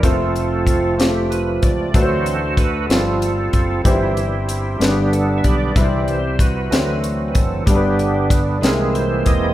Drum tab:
HH |xxxxxx|xxxxxx|xxxxxx|xxxxxx|
SD |---o--|---o--|---o--|---o--|
BD |o-o--o|o-o--o|o----o|o-o--o|

HH |xxxxxx|
SD |---o--|
BD |o-o--o|